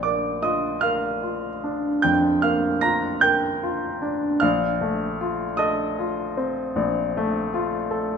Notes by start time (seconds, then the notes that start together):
Already playing: A#1
0.03 A#3 D5 D6
0.42 F4 D#5 D#6
0.81 A#4 F5 F6
1.23 F4
1.64 D4
2.02 F2 G5 G6
2.42 A#3 F5 F6
2.81 F4 A#5 A#6
3.21 A#4 G5 G6
3.63 F4
4.02 D4
4.40 A#1 F5 F6
4.81 A3
5.21 F4
5.57 A4 D#5 D#6
5.99 F4
6.37 C4
6.76 A#1
7.17 A3
7.54 F4
7.91 A4